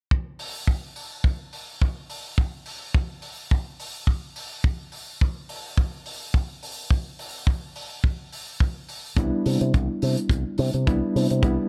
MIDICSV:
0, 0, Header, 1, 4, 480
1, 0, Start_track
1, 0, Tempo, 566038
1, 98, Time_signature, 4, 2, 24, 8
1, 9911, End_track
2, 0, Start_track
2, 0, Title_t, "Reed electric piano"
2, 0, Program_c, 0, 4
2, 7771, Note_on_c, 0, 55, 67
2, 7778, Note_on_c, 0, 59, 61
2, 7784, Note_on_c, 0, 62, 62
2, 7788, Note_on_c, 0, 64, 73
2, 9187, Note_off_c, 0, 55, 0
2, 9191, Note_off_c, 0, 59, 0
2, 9194, Note_off_c, 0, 62, 0
2, 9196, Note_off_c, 0, 64, 0
2, 9214, Note_on_c, 0, 55, 68
2, 9217, Note_on_c, 0, 59, 65
2, 9220, Note_on_c, 0, 62, 63
2, 9223, Note_on_c, 0, 64, 77
2, 9669, Note_off_c, 0, 55, 0
2, 9671, Note_off_c, 0, 59, 0
2, 9672, Note_off_c, 0, 62, 0
2, 9674, Note_off_c, 0, 64, 0
2, 9690, Note_on_c, 0, 55, 68
2, 9697, Note_on_c, 0, 59, 63
2, 9703, Note_on_c, 0, 62, 62
2, 9708, Note_on_c, 0, 64, 74
2, 9911, Note_off_c, 0, 55, 0
2, 9911, Note_off_c, 0, 59, 0
2, 9911, Note_off_c, 0, 62, 0
2, 9911, Note_off_c, 0, 64, 0
2, 9911, End_track
3, 0, Start_track
3, 0, Title_t, "Fingered electric bass"
3, 0, Program_c, 1, 33
3, 7773, Note_on_c, 1, 36, 82
3, 7883, Note_off_c, 1, 36, 0
3, 8020, Note_on_c, 1, 48, 70
3, 8127, Note_off_c, 1, 48, 0
3, 8150, Note_on_c, 1, 48, 84
3, 8241, Note_off_c, 1, 48, 0
3, 8261, Note_on_c, 1, 36, 89
3, 8367, Note_off_c, 1, 36, 0
3, 8501, Note_on_c, 1, 48, 81
3, 8607, Note_off_c, 1, 48, 0
3, 8730, Note_on_c, 1, 36, 72
3, 8842, Note_off_c, 1, 36, 0
3, 8977, Note_on_c, 1, 48, 82
3, 9085, Note_off_c, 1, 48, 0
3, 9108, Note_on_c, 1, 48, 76
3, 9200, Note_off_c, 1, 48, 0
3, 9221, Note_on_c, 1, 36, 84
3, 9327, Note_off_c, 1, 36, 0
3, 9459, Note_on_c, 1, 48, 79
3, 9566, Note_off_c, 1, 48, 0
3, 9589, Note_on_c, 1, 48, 69
3, 9680, Note_off_c, 1, 48, 0
3, 9689, Note_on_c, 1, 36, 88
3, 9801, Note_off_c, 1, 36, 0
3, 9911, End_track
4, 0, Start_track
4, 0, Title_t, "Drums"
4, 95, Note_on_c, 9, 36, 111
4, 180, Note_off_c, 9, 36, 0
4, 332, Note_on_c, 9, 46, 102
4, 417, Note_off_c, 9, 46, 0
4, 572, Note_on_c, 9, 36, 93
4, 657, Note_off_c, 9, 36, 0
4, 813, Note_on_c, 9, 46, 90
4, 898, Note_off_c, 9, 46, 0
4, 1052, Note_on_c, 9, 36, 97
4, 1137, Note_off_c, 9, 36, 0
4, 1296, Note_on_c, 9, 46, 88
4, 1380, Note_off_c, 9, 46, 0
4, 1539, Note_on_c, 9, 36, 96
4, 1624, Note_off_c, 9, 36, 0
4, 1777, Note_on_c, 9, 46, 98
4, 1862, Note_off_c, 9, 46, 0
4, 2016, Note_on_c, 9, 36, 105
4, 2101, Note_off_c, 9, 36, 0
4, 2254, Note_on_c, 9, 46, 100
4, 2339, Note_off_c, 9, 46, 0
4, 2497, Note_on_c, 9, 36, 120
4, 2582, Note_off_c, 9, 36, 0
4, 2731, Note_on_c, 9, 46, 92
4, 2816, Note_off_c, 9, 46, 0
4, 2979, Note_on_c, 9, 36, 101
4, 3064, Note_off_c, 9, 36, 0
4, 3219, Note_on_c, 9, 46, 100
4, 3304, Note_off_c, 9, 46, 0
4, 3452, Note_on_c, 9, 36, 97
4, 3537, Note_off_c, 9, 36, 0
4, 3696, Note_on_c, 9, 46, 99
4, 3781, Note_off_c, 9, 46, 0
4, 3935, Note_on_c, 9, 36, 120
4, 4020, Note_off_c, 9, 36, 0
4, 4172, Note_on_c, 9, 46, 99
4, 4257, Note_off_c, 9, 46, 0
4, 4421, Note_on_c, 9, 36, 105
4, 4506, Note_off_c, 9, 36, 0
4, 4657, Note_on_c, 9, 46, 102
4, 4741, Note_off_c, 9, 46, 0
4, 4897, Note_on_c, 9, 36, 102
4, 4982, Note_off_c, 9, 36, 0
4, 5137, Note_on_c, 9, 46, 103
4, 5221, Note_off_c, 9, 46, 0
4, 5377, Note_on_c, 9, 36, 98
4, 5461, Note_off_c, 9, 36, 0
4, 5620, Note_on_c, 9, 46, 106
4, 5704, Note_off_c, 9, 46, 0
4, 5856, Note_on_c, 9, 36, 101
4, 5940, Note_off_c, 9, 36, 0
4, 6098, Note_on_c, 9, 46, 105
4, 6183, Note_off_c, 9, 46, 0
4, 6333, Note_on_c, 9, 36, 114
4, 6418, Note_off_c, 9, 36, 0
4, 6578, Note_on_c, 9, 46, 93
4, 6663, Note_off_c, 9, 46, 0
4, 6816, Note_on_c, 9, 36, 112
4, 6901, Note_off_c, 9, 36, 0
4, 7059, Note_on_c, 9, 46, 100
4, 7144, Note_off_c, 9, 46, 0
4, 7296, Note_on_c, 9, 36, 106
4, 7381, Note_off_c, 9, 36, 0
4, 7535, Note_on_c, 9, 46, 96
4, 7620, Note_off_c, 9, 46, 0
4, 7772, Note_on_c, 9, 36, 109
4, 7774, Note_on_c, 9, 42, 79
4, 7857, Note_off_c, 9, 36, 0
4, 7859, Note_off_c, 9, 42, 0
4, 8020, Note_on_c, 9, 46, 102
4, 8104, Note_off_c, 9, 46, 0
4, 8149, Note_on_c, 9, 42, 64
4, 8234, Note_off_c, 9, 42, 0
4, 8259, Note_on_c, 9, 42, 78
4, 8261, Note_on_c, 9, 36, 107
4, 8343, Note_off_c, 9, 42, 0
4, 8346, Note_off_c, 9, 36, 0
4, 8498, Note_on_c, 9, 46, 100
4, 8583, Note_off_c, 9, 46, 0
4, 8626, Note_on_c, 9, 42, 53
4, 8711, Note_off_c, 9, 42, 0
4, 8730, Note_on_c, 9, 36, 98
4, 8740, Note_on_c, 9, 42, 79
4, 8815, Note_off_c, 9, 36, 0
4, 8825, Note_off_c, 9, 42, 0
4, 8970, Note_on_c, 9, 46, 93
4, 9055, Note_off_c, 9, 46, 0
4, 9104, Note_on_c, 9, 42, 61
4, 9188, Note_off_c, 9, 42, 0
4, 9219, Note_on_c, 9, 36, 101
4, 9221, Note_on_c, 9, 42, 72
4, 9304, Note_off_c, 9, 36, 0
4, 9306, Note_off_c, 9, 42, 0
4, 9465, Note_on_c, 9, 46, 104
4, 9550, Note_off_c, 9, 46, 0
4, 9585, Note_on_c, 9, 42, 55
4, 9670, Note_off_c, 9, 42, 0
4, 9690, Note_on_c, 9, 36, 111
4, 9690, Note_on_c, 9, 42, 81
4, 9775, Note_off_c, 9, 36, 0
4, 9775, Note_off_c, 9, 42, 0
4, 9911, End_track
0, 0, End_of_file